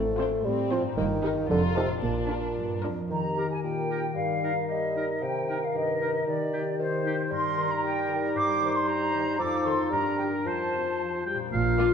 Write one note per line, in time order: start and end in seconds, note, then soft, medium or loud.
0.00 0.34 A1 medium
0.00 0.33 A2 medium
0.00 0.90 A2 soft
0.00 0.91 F3 soft
0.00 0.46 A3 medium
0.00 0.93 C4 soft
0.00 0.95 F4 soft
0.00 0.97 C5 soft
0.18 0.38 C4 soft
0.18 0.28 D4 soft
0.18 0.38 F4 soft
0.18 0.39 C5 soft
0.44 0.86 A2 medium
0.44 0.71 G3 medium
0.44 0.97 C4 medium
0.71 0.83 F3 medium
0.71 0.91 C4 soft
0.71 0.91 F4 soft
0.71 0.91 C5 medium
0.79 1.43 G2 soft
0.84 1.35 D#4 soft
0.88 1.40 G4 soft
0.93 1.50 A#4 soft
0.97 1.39 G1 medium
0.97 1.39 G2 medium
0.97 1.49 D#3 medium
0.97 1.06 A#3 soft
1.24 1.32 D#4 medium
1.24 1.43 D#4 medium
1.24 1.43 G4 medium
1.24 1.44 A#4 soft
1.32 1.96 F2 soft
1.36 1.98 D#4 soft
1.41 2.01 G4 soft
1.45 2.03 A4 soft
1.50 1.92 F1 medium
1.50 1.92 F2 medium
1.50 1.62 D3 medium
1.50 2.02 F4 medium
1.76 1.88 C3 medium
1.76 1.96 D#4 soft
1.76 1.96 G4 soft
1.76 1.96 A4 soft
1.85 3.04 A#2 soft
1.90 3.06 D4 soft
1.95 3.08 F4 soft
1.99 2.45 A#1 medium
1.99 2.82 D4 soft
1.99 3.62 A#4 soft
2.03 2.46 A#2 medium
2.03 2.82 A#2 medium
2.30 2.50 D4 soft
2.30 2.50 F4 soft
2.30 2.50 A#4 soft
2.57 2.82 G2 soft
2.84 3.10 F2 soft
2.84 3.04 D4 soft
2.84 3.04 F4 soft
2.84 3.04 A#4 soft
3.10 3.54 D#3 soft
3.10 4.18 D#3 soft
3.10 5.18 D#3 soft
3.10 4.12 G4 soft
3.10 3.48 A#5 medium
3.37 3.88 G4 soft
3.37 3.47 G4 soft
3.37 3.47 A#4 soft
3.50 3.63 G#5 medium
3.63 4.07 A#2 soft
3.63 6.28 A#4 soft
3.63 4.15 G5 medium
3.89 4.67 G4 soft
3.89 3.99 G4 soft
3.89 4.00 A#4 soft
4.15 5.23 G2 soft
4.15 4.60 G3 soft
4.15 6.27 A#4 soft
4.15 4.67 F5 medium
4.42 4.94 D#4 soft
4.42 4.53 D#4 soft
4.42 4.53 A#4 soft
4.68 5.13 G3 soft
4.68 5.73 G4 soft
4.68 5.20 D#5 medium
4.95 5.46 D#4 soft
4.95 5.05 D#4 soft
4.95 5.06 A#4 soft
5.21 5.65 C3 soft
5.21 6.28 C3 soft
5.21 7.27 D#3 soft
5.21 5.61 G5 medium
5.48 5.99 D#4 soft
5.48 5.58 D#4 soft
5.48 5.58 A#4 soft
5.63 5.75 F5 medium
5.74 6.18 G2 soft
5.74 6.52 G4 soft
5.74 6.26 D#5 medium
6.01 7.56 D#4 soft
6.01 6.10 D#4 soft
6.01 6.10 A#4 soft
6.27 7.33 D#3 soft
6.27 6.70 D#3 soft
6.27 7.29 G4 soft
6.27 6.78 D5 medium
6.53 6.62 D#4 soft
6.53 7.04 G4 soft
6.53 6.63 G4 soft
6.79 7.22 D#3 medium
6.79 7.33 C5 soft
6.79 7.30 C5 medium
7.05 7.15 D#4 soft
7.05 7.82 G4 soft
7.05 7.16 G4 soft
7.30 8.34 G2 medium
7.30 9.36 G3 medium
7.30 9.36 D#4 medium
7.30 8.38 A#4 medium
7.30 7.70 C6 medium
7.57 7.67 D#3 soft
7.57 8.08 D#4 soft
7.57 7.67 A#4 soft
7.72 7.84 A#5 medium
7.83 8.86 G4 soft
7.83 8.12 G5 medium
8.08 8.18 D#3 medium
8.08 8.61 D#4 soft
8.08 8.18 A#4 soft
8.35 9.42 G2 medium
8.35 9.39 C5 medium
8.35 8.74 D6 medium
8.61 8.71 D#3 medium
8.61 9.12 D#4 soft
8.61 8.71 C5 medium
8.76 8.88 C6 medium
8.88 9.42 G4 medium
8.88 9.40 A#5 medium
9.13 9.22 D#3 soft
9.13 9.65 D#4 soft
9.13 9.22 C5 medium
9.38 9.95 F2 medium
9.38 9.93 F3 medium
9.38 9.94 D#4 medium
9.38 9.94 A4 medium
9.38 9.66 D6 medium
9.65 9.74 D#3 soft
9.65 9.95 D#4 soft
9.65 9.75 A4 soft
9.65 9.95 A4 soft
9.65 9.92 C6 medium
9.91 10.48 G2 medium
9.91 10.29 G3 medium
9.91 10.47 D4 soft
9.91 10.48 A#4 soft
9.91 10.18 A#5 medium
10.17 10.29 D3 soft
10.17 10.48 D4 soft
10.17 10.29 G4 soft
10.17 10.48 A#4 soft
10.17 10.23 G5 medium
10.44 11.54 F2 soft
10.44 11.24 F3 soft
10.44 11.26 F4 soft
10.44 11.25 C5 soft
10.44 11.24 A5 medium
10.72 10.82 C3 soft
10.72 11.25 F4 soft
10.72 10.83 F4 soft
10.99 11.25 F3 soft
10.99 11.54 C5 soft
11.25 11.52 G3 soft
11.25 11.42 F4 soft
11.25 11.38 G4 soft
11.25 11.38 G5 medium
11.34 11.94 A#2 soft
11.39 11.94 D4 soft
11.43 11.94 F4 soft
11.47 11.94 A#4 soft
11.52 11.94 A#1 medium
11.52 11.94 A#2 medium
11.52 11.94 F4 soft
11.52 11.94 F5 medium
11.78 11.88 A#3 soft
11.78 11.87 A#3 soft
11.78 11.87 D4 soft
11.78 11.87 F4 soft
11.78 11.84 D6 soft